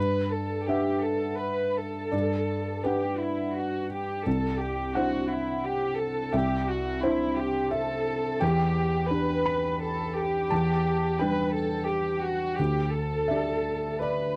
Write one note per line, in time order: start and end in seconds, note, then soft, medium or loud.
0.00 0.67 G2 soft
0.00 0.30 B4 soft
0.31 0.68 A4 soft
0.66 2.08 D4 soft
0.66 1.04 G4 soft
0.66 2.09 B4 soft
0.66 2.09 E5 medium
0.66 2.08 F#5 soft
1.04 1.41 A4 soft
1.39 1.76 B4 soft
1.75 2.84 A4 soft
2.12 2.82 G2 soft
2.12 2.80 D5 soft
2.84 4.22 D4 soft
2.84 3.21 G4 soft
2.84 3.86 B4 soft
2.84 4.22 F#5 soft
3.19 3.55 E4 soft
3.56 3.91 F#4 soft
3.91 4.25 G4 soft
4.25 4.93 C2 soft
4.25 4.60 A4 soft
4.60 4.95 G4 soft
4.94 6.30 D4 soft
4.94 6.30 E4 soft
4.94 5.29 F#4 soft
4.94 6.30 C5 soft
4.94 6.30 F#5 medium
5.30 5.64 E4 soft
5.64 5.99 G4 soft
5.98 6.33 A4 soft
6.33 7.01 C2 soft
6.33 6.68 G4 medium
6.33 6.99 E5 medium
6.69 7.04 F#4 soft
7.03 8.38 D4 soft
7.03 7.38 E4 medium
7.03 8.38 E4 soft
7.03 7.68 C5 medium
7.39 7.73 G4 medium
7.71 8.40 A4 medium
7.71 8.37 E5 medium
8.40 9.09 E2 medium
8.40 9.10 G4 medium
8.40 9.42 G5 medium
9.10 10.46 D4 soft
9.10 10.47 G4 soft
9.10 9.81 B4 medium
9.10 10.47 B4 soft
9.46 10.47 B5 medium
9.81 10.15 A4 medium
10.17 11.20 G4 medium
10.50 11.18 E2 soft
10.50 11.16 A5 medium
11.19 12.55 G3 soft
11.19 12.55 D4 soft
11.19 11.55 B4 medium
11.19 12.56 B4 soft
11.19 11.85 G5 medium
11.54 11.88 A4 medium
11.88 12.23 G4 soft
12.22 12.58 F#4 soft
12.58 13.27 D2 soft
12.58 12.93 G4 medium
12.93 14.02 A4 medium
13.28 14.36 D4 soft
13.28 14.36 G4 soft
13.28 13.99 D5 soft
13.28 13.97 E5 medium
14.01 14.36 B4 soft
14.01 14.36 D5 soft